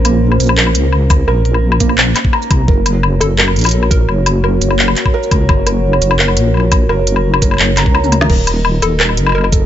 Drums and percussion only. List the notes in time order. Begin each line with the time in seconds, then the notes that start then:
0.05 closed hi-hat, low woodblock
0.32 low woodblock
0.40 closed hi-hat, shaker
0.43 shaker
0.46 low woodblock, shaker
0.58 clap
0.67 low woodblock
0.75 closed hi-hat
0.92 low woodblock
1.10 kick, closed hi-hat, low woodblock, shaker
1.28 low woodblock
1.45 closed hi-hat
1.54 low woodblock
1.72 low woodblock
1.80 kick, closed hi-hat, shaker
1.89 low woodblock
1.98 clap
2.16 clap, closed hi-hat, low woodblock
2.25 kick
2.33 low woodblock
2.42 shaker
2.51 kick, closed hi-hat, low woodblock
2.68 kick
2.86 closed hi-hat, low woodblock
3.03 low woodblock
3.21 closed hi-hat, low woodblock, shaker
3.38 clap
3.48 low woodblock
3.56 closed hi-hat
3.59 closed hi-hat
3.61 closed hi-hat
3.64 closed hi-hat, low woodblock
3.66 closed hi-hat
3.69 closed hi-hat
3.71 closed hi-hat
3.83 low woodblock
3.91 kick, closed hi-hat, shaker
4.09 low woodblock
4.26 closed hi-hat, low woodblock
4.44 low woodblock
4.62 closed hi-hat, shaker
4.71 low woodblock
4.79 clap
4.88 low woodblock
4.96 clap, closed hi-hat
5.06 kick, low woodblock
5.23 shaker
5.31 kick, closed hi-hat, low woodblock
5.49 kick, low woodblock
5.67 closed hi-hat, low woodblock
5.93 low woodblock
6.02 closed hi-hat, shaker
6.11 low woodblock
6.19 clap
6.28 low woodblock
6.37 closed hi-hat
6.54 low woodblock
6.57 low woodblock
6.60 low woodblock
6.72 kick, closed hi-hat, low woodblock, shaker
6.89 low woodblock
7.07 closed hi-hat
7.16 low woodblock
7.34 low woodblock
7.42 kick, closed hi-hat, shaker
7.51 low woodblock
7.54 low woodblock
7.59 clap
7.77 clap, closed hi-hat, low woodblock
7.86 kick
7.95 low woodblock
8.04 high tom, shaker
8.12 closed hi-hat, mid tom, low woodblock
8.21 snare
8.30 kick, crash
8.47 closed hi-hat, low woodblock
8.65 low woodblock
8.82 closed hi-hat, low woodblock, shaker
9.00 clap
9.09 low woodblock
9.17 closed hi-hat
9.26 low woodblock
9.29 low woodblock
9.32 low woodblock
9.38 low woodblock
9.41 low woodblock
9.44 low woodblock
9.52 kick, closed hi-hat, shaker